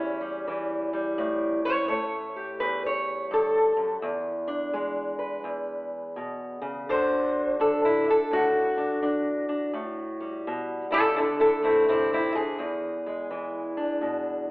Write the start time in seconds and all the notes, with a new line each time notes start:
Already playing: E2 E3 G3 C#4 E4
0.21 G3
0.47 E3
0.93 G3
1.18 A2
1.65 C#4 C#5
1.88 A3 C#5
2.36 G4
2.60 E2 B4
2.86 C#5
3.31 G2 A4
3.77 F#2
4.02 E2
4.48 D4
4.74 G#3
5.19 B4
5.44 E2
6.16 B2
6.62 C#3
6.89 D3 D4 F#4 C5
7.60 D4 A4
7.85 E4
8.04 D4
8.10 A4
8.31 A2 F#4
8.77 D4
9.02 D4
9.49 D4
9.73 A2
10.20 G3
10.47 B2
10.91 C#3 E4 A4
11.16 D3 E4 A4
11.40 E4 A4
11.62 A3 C4 E4
11.88 C3 C4 E4
12.13 C4 E4
12.35 D3 G#4
12.59 E2
13.07 G#3
13.31 E3
13.77 D4
14.01 B2